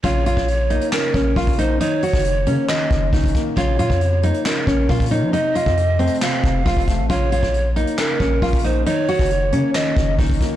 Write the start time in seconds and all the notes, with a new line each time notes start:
0.04 A#1 C#3 F4 C#5, kick, closed hi-hat
0.26 F4, closed hi-hat
0.37 A#1, kick, closed hi-hat
0.48 closed hi-hat
0.70 A#3 D#4, closed hi-hat
0.81 closed hi-hat
0.92 C#3 A#4, snare, clap
1.14 A#1 C#4, kick
1.36 A#1 C#4 F4, kick, closed hi-hat
1.42 closed hi-hat
1.47 kick, closed hi-hat
1.53 closed hi-hat
1.58 A#3 D#4 C5, closed hi-hat
1.80 D#3 D#4 C#5, closed hi-hat
2.02 F#4, closed hi-hat, open hi-hat
2.08 closed hi-hat
2.13 F#1, kick, closed hi-hat
2.19 closed hi-hat
2.24 closed hi-hat
2.46 C#3 A#3 C#4, closed hi-hat
2.69 D#3 D#5, snare, clap
2.91 F#1, kick
3.13 F#1 C#4 D#4, kick, closed hi-hat
3.20 kick, closed hi-hat
3.28 closed hi-hat
3.35 A#3, kick, closed hi-hat
3.57 A#1 C#3 F4 C#5, kick, closed hi-hat
3.79 A#2 F4, closed hi-hat
3.90 F2, kick, closed hi-hat
4.01 closed hi-hat
4.23 A#3 D#4, closed hi-hat
4.34 closed hi-hat
4.45 C#3 A#4, snare, clap
4.67 A#1 C#4, kick
4.89 A#2 C#4 F4, kick, closed hi-hat
4.95 closed hi-hat
5.00 kick, closed hi-hat
5.06 closed hi-hat
5.11 A#3 D#4 C#5, closed hi-hat
5.22 F3
5.33 C3 D#4 D#5, closed hi-hat
5.55 F4, closed hi-hat, open hi-hat
5.66 F2, kick
5.77 closed hi-hat
5.99 A3 C4, closed hi-hat
6.07 closed hi-hat
6.14 closed hi-hat
6.22 C3 F5, snare, clap
6.44 F1, kick
6.66 F1 C4 F4, kick, closed hi-hat
6.73 kick, closed hi-hat
6.80 closed hi-hat
6.88 A3, kick, closed hi-hat
6.99 A1
7.10 A#1 C#3 F4 C#5, kick, closed hi-hat
7.32 F4, closed hi-hat
7.43 A#1, kick, closed hi-hat
7.54 closed hi-hat
7.76 A#3 D#4, closed hi-hat
7.87 closed hi-hat
7.98 C#3 A#4, snare, clap
8.20 A#1 C#4, kick
8.42 A#1 C#4 F4, kick, closed hi-hat
8.48 closed hi-hat
8.53 kick, closed hi-hat
8.59 closed hi-hat
8.64 A#3 D#4 C5, closed hi-hat
8.86 D#3 D#4 C#5, closed hi-hat
9.08 F#4, closed hi-hat, open hi-hat
9.14 closed hi-hat
9.19 F#1, kick, closed hi-hat
9.25 closed hi-hat
9.30 closed hi-hat
9.52 C#3 A#3 C#4, closed hi-hat
9.75 D#3 D#5, snare, clap
9.97 F#1, kick
10.19 F#1 C#4 D#4, kick, closed hi-hat
10.26 kick, closed hi-hat
10.33 closed hi-hat
10.41 A#3, kick, closed hi-hat